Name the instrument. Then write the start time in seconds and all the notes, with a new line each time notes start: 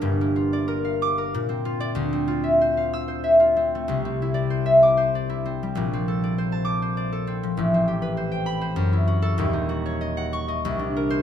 harp
Already playing: A#3 D4 A#4 D5 A#5
0.02 G1 G2
0.21 A#3
0.36 F4
0.53 D5
0.68 A#4
0.85 F5
1.02 D6
1.18 A#4
1.34 A#2
1.49 C4
1.65 F4
1.80 D5
1.95 D2 D3
2.13 C4
2.28 F4
2.44 E5
2.61 C5
2.77 F5
2.93 E6
3.08 C5
3.24 E5
3.40 F4
3.57 C4
3.75 A3
3.88 C2 C3
4.05 C4
4.22 E4
4.34 D5
4.50 C5
4.66 E5
4.83 D6
4.97 C5
5.15 D5
5.29 E4
5.46 C4
5.63 G3
5.75 A#1 A#2
5.93 C4
6.08 A4
6.24 D5
6.38 C5
6.52 A5
6.65 D6
6.82 C5
6.97 D5
7.13 A4
7.27 C4
7.43 F3
7.57 A1 A2
7.74 C4
7.88 G4
8.02 B4
8.17 C5
8.32 G5
8.46 B5
8.61 C5
8.76 F#2
8.93 E4
9.07 F#4
9.22 A4
9.38 D#1 D#2
9.53 D#4
9.69 F#4
9.86 C#5
10.01 D#5
10.17 F#5
10.33 C#6
10.48 D#5
10.65 C2
10.79 D4
10.97 A#4
11.10 C5